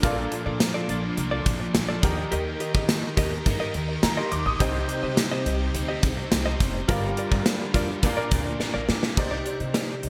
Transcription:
Already playing: string machine D4
0.02 upright bass A#1, distorted electric guitar A#2 F3 A#3, grand piano A#2 F4 A4 A#4 D5 F5, string machine F3 A#3, clean electric guitar F4 A4 D5, kick, closed hi-hat
0.32 muted clean electric guitar stroke, closed hi-hat
0.46 upright bass A#2, clean electric guitar F4 A4 D5
0.60 muted clean electric guitar stroke, snare, closed hi-hat, tambourine
0.74 clean electric guitar F4 A4 D5
0.88 upright bass A#1, distorted electric guitar F3 A#3, clean electric guitar F4 A4 D5, closed hi-hat
1.03 muted clean electric guitar stroke
1.17 upright bass C2, distorted electric guitar A#2 F3 A#3, muted clean electric guitar stroke, closed hi-hat
1.31 clean electric guitar F4 A4 D5
1.46 upright bass A#1, muted clean electric guitar stroke, kick, closed hi-hat
1.60 muted clean electric guitar stroke
1.74 upright bass A#1, distorted electric guitar A#2 F3 A#3, muted clean electric guitar stroke, snare, closed hi-hat, tambourine
1.89 clean electric guitar F4 A4 D5
2.02 upright bass D#2, string machine D#3 D#4 G4 A#4, grand piano D#3 D#4 G4 A#4 D#5 G5, distorted electric guitar A#3 D#4, muted clean electric guitar stroke, kick, closed hi-hat
2.06 distorted electric guitar D#3
2.17 muted clean electric guitar stroke
2.31 upright bass D#2, clean electric guitar G4 A#4 D#5, closed hi-hat
2.60 clean electric guitar G4 A#4 D#5, closed hi-hat
2.74 upright bass D#3, clean electric guitar G4 A#4 D#5, kick
2.89 muted clean electric guitar stroke, snare, closed hi-hat, tambourine
3.03 muted clean electric guitar stroke
3.17 upright bass D#2, clean electric guitar G4 A#4 D#5, kick, closed hi-hat
3.32 muted clean electric guitar stroke
3.45 upright bass G2, distorted electric guitar D#3 A#3 D#4, muted clean electric guitar stroke, kick, closed hi-hat
3.60 clean electric guitar G4 A#4 D#5
3.74 upright bass D#2, muted clean electric guitar stroke, closed hi-hat
3.89 muted clean electric guitar stroke
4.02 distorted electric guitar D#3 A#3 D#4, upright bass D#3, grand piano A#5, muted clean electric guitar stroke, snare, closed hi-hat, tambourine
4.17 clean electric guitar G4 A#4 D#5, grand piano C6
4.32 upright bass D#2, grand piano D6, muted clean electric guitar stroke, closed hi-hat
4.46 upright bass A#1, grand piano D#6, muted clean electric guitar stroke
4.59 upright bass C2, distorted electric guitar C3 G3, grand piano C3 D#4 G4 C5 D#5 G5, string machine C3 C4, clean electric guitar G4 C5 D#5, kick, closed hi-hat
4.63 distorted electric guitar C4
4.89 muted clean electric guitar stroke, closed hi-hat
5.03 upright bass C3, clean electric guitar G4 C5 D#5
5.17 muted clean electric guitar stroke, snare, closed hi-hat, tambourine
5.31 clean electric guitar G4 C5 D#5
5.46 upright bass C2, clean electric guitar G4 C5 D#5, closed hi-hat
5.60 muted clean electric guitar stroke
5.74 upright bass D2, distorted electric guitar C3 G3 C4, muted clean electric guitar stroke, closed hi-hat
5.89 clean electric guitar G4 C5 D#5
6.03 upright bass C2, muted clean electric guitar stroke, kick, closed hi-hat
6.17 muted clean electric guitar stroke
6.31 upright bass C2, distorted electric guitar C3 G3 C4, muted clean electric guitar stroke, snare, closed hi-hat, tambourine
6.46 clean electric guitar G4 C5 D#5
6.60 upright bass F1, muted clean electric guitar stroke, kick, closed hi-hat
6.74 muted clean electric guitar stroke
6.88 upright bass G1, distorted electric guitar G2 D3 G3, grand piano G2 F4 G4 A#4 D5 F5, string machine G3 D4 F4 A#4, clean electric guitar F4 A#4 D5, kick, closed hi-hat
7.17 clean electric guitar F4 A#4 D5, closed hi-hat
7.31 upright bass G2, clean electric guitar F4 A#4 D5, kick
7.46 muted clean electric guitar stroke, snare, closed hi-hat, tambourine
7.60 muted clean electric guitar stroke
7.73 upright bass F2, distorted electric guitar D3 G3, clean electric guitar F4 A#4 D5, kick, closed hi-hat
7.88 muted clean electric guitar stroke
8.02 distorted electric guitar A#2 F3 A#3, grand piano A#2 D4 F4 A#4 D5 F5, upright bass A#2, string machine A#3, muted clean electric guitar stroke, kick, closed hi-hat
8.17 clean electric guitar F4 A#4 D5
8.31 upright bass D2, muted clean electric guitar stroke, kick, closed hi-hat
8.46 muted clean electric guitar stroke
8.59 distorted electric guitar A#2 F3 A#3, muted clean electric guitar stroke, muted upright bass stroke, snare
8.74 upright bass A#1, clean electric guitar F4 A#4 D5
8.88 upright bass A#2, muted clean electric guitar stroke, snare
9.03 muted clean electric guitar stroke, snare
9.16 upright bass C2, string machine C3 C4 D#4 D5, grand piano C3 D#4 G4 C5 D5, muted clean electric guitar stroke, kick, crash
9.31 clean electric guitar D#4 G4 D5
9.45 clean electric guitar D#4 G4 D5, closed hi-hat
9.60 upright bass C3, muted clean electric guitar stroke, closed hi-hat
9.74 clean electric guitar D#4 G4 D5, snare, closed hi-hat
9.88 muted clean electric guitar stroke
10.03 upright bass C2, muted clean electric guitar stroke, closed hi-hat

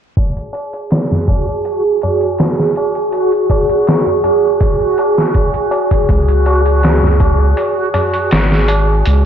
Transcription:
0.16 synth texture F#4, ambient pad G#4, kick, closed hi-hat, tabla na
0.37 closed hi-hat
0.53 closed hi-hat, tabla na
0.73 closed hi-hat, tabla na
0.91 snare, closed hi-hat, tabla na
1.11 snare, tabla na, tabla ge
1.28 kick, closed hi-hat, tabla na, tabla ge
1.49 tabla na
1.65 closed hi-hat, tabla na
2.02 closed hi-hat, tabla na, tabla ge
2.21 closed hi-hat, tabla na
2.39 snare, closed hi-hat, tabla na
2.60 snare
2.76 closed hi-hat, tabla na
2.95 closed hi-hat, tabla na
3.12 closed hi-hat, tabla na
3.32 closed hi-hat
3.50 kick, closed hi-hat, tabla na
3.70 closed hi-hat, tabla na
3.87 snare, closed hi-hat, tabla na
4.06 tabla na, tabla ge
4.24 closed hi-hat, tabla na, tabla ge
4.44 tabla na
4.60 kick, closed hi-hat, tabla na
4.98 closed hi-hat, tabla na
5.18 snare
5.34 kick, closed hi-hat, tabla na
5.54 closed hi-hat
5.71 closed hi-hat, tabla na
5.91 kick, closed hi-hat, tabla na
6.09 analog synth bass C#2, kick, closed hi-hat, tabla na
6.28 closed hi-hat
6.46 closed hi-hat, tabla na
6.66 closed hi-hat, tabla na
6.83 snare, closed hi-hat, tabla na
7.02 snare, tabla na, tabla ge
7.20 kick, closed hi-hat, tabla na, tabla ge
7.40 tabla na
7.57 closed hi-hat, tabla na
7.94 closed hi-hat, tabla na, tabla ge
8.14 closed hi-hat, tabla na
8.31 analog synth bass G#1, snare, closed hi-hat, tabla na
8.52 snare
8.68 closed hi-hat, tabla na
8.88 tabla na
9.06 analog synth bass C#2, closed hi-hat, tabla na

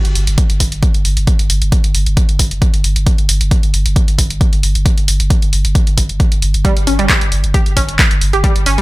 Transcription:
0.05 sub bass G1, closed hi-hat
0.15 sub bass G1, open hi-hat
0.27 sub bass G1, closed hi-hat
0.38 kick, closed hi-hat
0.50 sub bass G1, closed hi-hat
0.60 sub bass G1, kick, open hi-hat
0.72 sub bass G1, closed hi-hat
0.83 kick, closed hi-hat
0.94 sub bass G1, closed hi-hat
1.05 sub bass G1, open hi-hat
1.17 sub bass G1, closed hi-hat
1.27 kick, closed hi-hat
1.39 sub bass G1, closed hi-hat
1.50 sub bass G1, open hi-hat
1.62 sub bass G1, closed hi-hat
1.72 kick, closed hi-hat
1.84 sub bass G1, closed hi-hat
1.95 sub bass G1, open hi-hat
2.06 sub bass G1, closed hi-hat
2.17 kick, closed hi-hat
2.29 sub bass G1, closed hi-hat
2.39 sub bass G1, kick, open hi-hat
2.51 sub bass G1, closed hi-hat
2.62 kick, closed hi-hat
2.74 sub bass G1, closed hi-hat
2.84 sub bass G1, open hi-hat
2.96 sub bass G1, closed hi-hat
3.07 kick, closed hi-hat
3.18 sub bass G1, closed hi-hat
3.29 sub bass G1, open hi-hat
3.41 sub bass G1, closed hi-hat
3.51 kick, closed hi-hat
3.63 sub bass G1, closed hi-hat
3.74 sub bass G1, open hi-hat
3.86 sub bass G1, closed hi-hat
3.96 kick, closed hi-hat
4.08 sub bass G1, closed hi-hat
4.18 sub bass G1, kick, open hi-hat
4.30 sub bass G1, closed hi-hat
4.41 kick, closed hi-hat
4.53 sub bass G1, closed hi-hat
4.63 sub bass G1, open hi-hat
4.75 sub bass G1, closed hi-hat
4.86 kick, closed hi-hat
4.97 sub bass G1, closed hi-hat
5.08 sub bass G1, open hi-hat
5.20 sub bass G1, closed hi-hat
5.30 kick, closed hi-hat
5.42 sub bass G1, closed hi-hat
5.53 sub bass G1, open hi-hat
5.65 sub bass G1, closed hi-hat
5.75 kick, closed hi-hat
5.87 sub bass G1, closed hi-hat
5.98 sub bass G1, kick, open hi-hat
6.09 sub bass G1, closed hi-hat
6.20 kick, closed hi-hat
6.32 sub bass G1, closed hi-hat
6.42 sub bass G1, open hi-hat
6.54 sub bass G1, closed hi-hat
6.65 synth arpeggio sound G3, kick, closed hi-hat
6.77 sub bass G1, closed hi-hat
6.87 sub bass G1, synth arpeggio sound C#4, open hi-hat
6.99 sub bass G1, synth arpeggio sound G3, closed hi-hat
7.09 synth arpeggio sound G4, kick, clap, closed hi-hat
7.21 sub bass G1, closed hi-hat
7.32 sub bass G1, open hi-hat
7.44 sub bass G1, closed hi-hat
7.54 synth arpeggio sound G4, kick, closed hi-hat
7.66 sub bass G1, closed hi-hat
7.77 sub bass G1, synth arpeggio sound C#4, kick, open hi-hat
7.89 sub bass G1, closed hi-hat
7.99 kick, clap, closed hi-hat
8.11 sub bass G1, closed hi-hat
8.21 sub bass G1, open hi-hat
8.33 sub bass G1, synth arpeggio sound G4, closed hi-hat
8.44 synth arpeggio sound G3, kick, closed hi-hat
8.56 sub bass G1, closed hi-hat
8.66 sub bass G1, synth arpeggio sound C#4, open hi-hat
8.78 sub bass G1, synth arpeggio sound G3, closed hi-hat

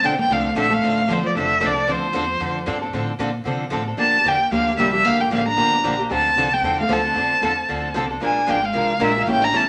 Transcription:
0.02 upright bass B1, steel-string acoustic guitar D3 F3 C4 D4 A4, violin G5
0.19 steel-string acoustic guitar A#3, violin G5
0.29 upright bass C2, steel-string acoustic guitar D3 F3 A3 C4 D4 A4, violin F5
0.55 upright bass A#1, steel-string acoustic guitar D3 F3 A3 C4 D4 A4
0.59 violin E5
0.70 steel-string acoustic guitar A3 C4 D4 A4, violin F5
0.82 upright bass A1, steel-string acoustic guitar D3 F3 C4 D4 A4
1.08 upright bass G1, steel-string acoustic guitar D3 F3 C4 D4 A4
1.13 violin C5
1.23 steel-string acoustic guitar F3, violin D5
1.34 upright bass F1, steel-string acoustic guitar D3 F3 A3 C4 D4 A4
1.39 violin E5
1.60 upright bass C2, steel-string acoustic guitar D3 F3 C4 D4 A4
1.66 violin D5
1.74 steel-string acoustic guitar C4 D4 A4
1.87 upright bass D2, steel-string acoustic guitar D3 F3 C4 D4 A4
1.91 violin C5
2.14 upright bass E2, steel-string acoustic guitar D3 F3 C4 D4 A4
2.40 upright bass F2, steel-string acoustic guitar D3 F3 C4 D4 A4
2.66 upright bass G2, steel-string acoustic guitar D3 F3 C4 D4 A4
2.81 steel-string acoustic guitar C4 D4 A4
2.93 upright bass A2, steel-string acoustic guitar D3 F3 C4 D4 A4
3.19 upright bass A#2, steel-string acoustic guitar D3 F3 C4 D4 A4
3.45 upright bass C3, steel-string acoustic guitar D3 F3 C4 D4 A4
3.71 upright bass A2, steel-string acoustic guitar D3 F3 C4 D4 A4
3.87 steel-string acoustic guitar C4 D4 A4
3.97 upright bass G2, steel-string acoustic guitar D3 F3 A#3 D4 G4, violin A5
4.24 upright bass E2, steel-string acoustic guitar D3 F3 A#3 D4 G4, violin G5
4.50 upright bass D2, steel-string acoustic guitar D3 F3 A#3 D4 G4, violin F5
4.78 upright bass C2, steel-string acoustic guitar D3 F3 G3 A#3 D4 G4, violin E5
4.93 steel-string acoustic guitar G3 A#3 D4 G4, violin E5
5.04 upright bass A#1, steel-string acoustic guitar D3 F3 A#3 D4 G4, violin F5
5.21 steel-string acoustic guitar A#3, violin G5
5.31 upright bass A1, steel-string acoustic guitar D3 F3 A#3 D4 G4, violin F5
5.48 steel-string acoustic guitar D4, violin A#5
5.57 upright bass G1, steel-string acoustic guitar D3 F3 A#3 D4 G4
5.84 upright bass A#1, steel-string acoustic guitar D3 F3 A#3 D4 G4
5.99 steel-string acoustic guitar A#3 D4 G4
6.09 upright bass D2, steel-string acoustic guitar D3 F3 C4 D4 A4, violin A5
6.36 upright bass C2, steel-string acoustic guitar D3 F3 C4 D4 A4
6.54 steel-string acoustic guitar C4, violin G5
6.62 upright bass E2, steel-string acoustic guitar D3 F3 C4 D4 A4
6.81 steel-string acoustic guitar A3, violin F5
6.89 upright bass D2, steel-string acoustic guitar D3 F3 C4 D4 A4
6.93 violin A5
7.05 steel-string acoustic guitar C4 D4 A4
7.15 upright bass F2, steel-string acoustic guitar D3 F3 C4 D4 A4
7.42 upright bass E2, steel-string acoustic guitar D3 F3 C4 D4 A4
7.69 upright bass D2, steel-string acoustic guitar D3 F3 C4 D4 A4
7.95 upright bass C2, steel-string acoustic guitar D3 F3 C4 D4 A4
8.10 steel-string acoustic guitar C4 D4 A4
8.22 upright bass A#1, steel-string acoustic guitar F3 G#3 D4 F4 A#4, violin G#5
8.48 upright bass G#1, steel-string acoustic guitar F3 G#3 A#3 D4 F4 A#4, violin G5
8.62 steel-string acoustic guitar G#3, violin F5
8.74 upright bass C2, steel-string acoustic guitar F3 G#3 D4 F4 A#4
8.99 upright bass A#1, steel-string acoustic guitar F3 G#3 D4 F4 A#4
9.03 violin E5
9.15 steel-string acoustic guitar G#3 D4 F4 A#4
9.22 upright bass A1, steel-string acoustic guitar G3, violin F5
9.27 steel-string acoustic guitar C#3 E3 A3 A#3 C#4 E4 G4 A4
9.31 violin G5
9.42 steel-string acoustic guitar D4, violin A#5
9.52 upright bass G1, steel-string acoustic guitar C#3 E3 G3 A3 C#4 E4 G4 A4
9.56 violin A5

